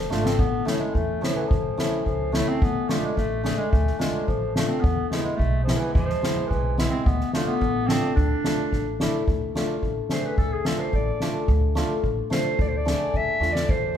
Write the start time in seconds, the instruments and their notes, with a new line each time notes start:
Already playing: clarinet F3
0.10 upright bass G#1, hammered dulcimer A3 D4 F4, clarinet A3, snare
0.25 clarinet C4, snare
0.38 upright bass A1, clarinet B3, kick
0.65 hammered dulcimer A3 C#4 E4, clarinet A3, snare
0.80 clarinet G#3
0.94 upright bass E2, clarinet A3, kick
1.21 clarinet F3, hammered dulcimer A3 C#4 E4, snare
1.35 clarinet E3
1.40 clarinet D3 E3
1.48 upright bass A1, clarinet F3, kick
1.77 hammered dulcimer A3 C#4 E4, snare
2.06 upright bass C#2, clarinet F3, kick
2.32 hammered dulcimer A3 C#4 E4, clarinet A3, snare
2.48 clarinet C4
2.62 upright bass D2, clarinet B3, kick
2.89 clarinet A3, hammered dulcimer A3 D4 F4, snare
3.04 clarinet G#3
3.17 upright bass A1, clarinet A3, kick, snare
3.44 hammered dulcimer A3 D4 G#4, clarinet A3, snare
3.57 clarinet G#3
3.71 upright bass D2, clarinet A3, kick
3.87 snare
3.98 clarinet G#3, hammered dulcimer A3 D4 F4, snare
4.27 upright bass A1, clarinet F3, kick
4.56 clarinet A3, hammered dulcimer A3 D4 F4, snare
4.68 clarinet C4
4.81 upright bass E2, clarinet B3, kick
5.09 hammered dulcimer G#3 B3, clarinet A3, snare
5.14 hammered dulcimer E4
5.24 clarinet G#3
5.36 upright bass B1, clarinet A3, kick
5.64 clarinet F3, snare
5.68 hammered dulcimer G#3 B3 E4
5.78 clarinet E3
5.92 upright bass E2, clarinet E3, kick
6.03 clarinet F3
6.09 snare
6.22 hammered dulcimer G#3 B3 E4, snare
6.48 upright bass B1, clarinet E3, kick
6.78 hammered dulcimer G#3 B3 E4, snare
6.90 clarinet C4
7.05 upright bass D2, clarinet B3, kick
7.20 snare
7.33 clarinet A3, hammered dulcimer A3 D4 F4, snare
7.47 clarinet B3
7.61 upright bass A1, kick
7.87 hammered dulcimer A3 D4 F4, clarinet C4, snare
8.15 upright bass D2, clarinet D4, kick
8.44 hammered dulcimer A3 D4 F4, snare
8.72 upright bass A1, kick, snare
9.00 hammered dulcimer A3 D4 E4, snare
9.28 upright bass D2, kick
9.55 hammered dulcimer A3 D4 F4, snare
9.82 upright bass A1, kick
10.09 hammered dulcimer A3 D4 G#4, clarinet C5, snare
10.25 clarinet B4
10.38 upright bass D2, clarinet A4, kick
10.53 clarinet G#4
10.65 hammered dulcimer A3 D4 F4, clarinet A4, snare
10.79 clarinet C5
10.93 upright bass A1, clarinet D5, kick
11.20 hammered dulcimer A3 D4 F4, snare
11.48 upright bass D2, kick
11.75 hammered dulcimer A3 D4 F4, snare
12.04 upright bass A1, kick
12.30 hammered dulcimer A3 D4 F4, clarinet C5, snare
12.59 upright bass D2, clarinet D5, kick
12.68 clarinet C5
12.77 clarinet D5
12.85 hammered dulcimer A3 D4 G#4, snare
13.14 upright bass D2, clarinet E5, kick
13.40 upright bass E2, hammered dulcimer A3 D4 F4, snare
13.53 clarinet D5, snare
13.69 upright bass E2, clarinet C5, kick